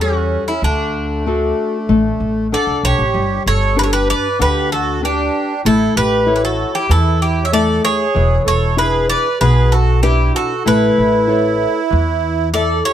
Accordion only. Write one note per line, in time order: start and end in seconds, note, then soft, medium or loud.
0.00 0.44 C#4 medium
0.47 0.62 C#4 medium
0.63 2.48 A3 medium
2.53 2.82 A4 medium
2.85 3.43 G4 medium
3.48 3.76 A4 medium
3.79 3.85 G4 medium
3.86 3.91 A4 medium
3.93 4.08 G4 medium
4.10 4.38 B4 medium
4.41 4.69 G4 medium
4.73 5.01 F#4 medium
5.03 5.61 D4 medium
5.65 5.94 E4 medium
5.96 6.33 G4 medium
6.35 6.42 G4 medium
6.42 6.72 F#4 medium
6.73 6.87 E4 medium
6.88 7.18 E4 medium
7.21 7.44 E4 medium
7.43 7.51 C#5 medium
7.52 7.81 A4 medium
7.84 8.42 G#4 medium
8.45 8.75 A4 medium
8.77 9.06 G#4 medium
9.09 9.38 B4 medium
9.40 9.69 G#4 medium
9.71 10.00 F#4 medium
10.04 10.32 E4 medium
10.34 10.63 F#4 medium
10.64 12.49 E4 loud
12.55 12.84 A4 medium
12.86 12.93 G4 medium